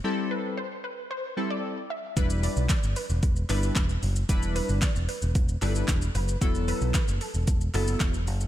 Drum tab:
HH |----------------|x-o-x-o-x-o-x-o-|x-o-x-o-x-o-x-o-|x-o-x-o-x-o-x-o-|
SH |----------------|xxxxxxxxxxxxxxxx|xxxxxxxxxxxxxxxx|xxxxxxxxxxxxxxxx|
CP |----------------|----x-----x-x---|----x-----x-x---|----x-----x-x---|
SD |----------------|----o-------o---|----o-------o---|----o-------o---|
BD |----------------|o---o---o---o---|o---o---o---o---|o---o---o---o---|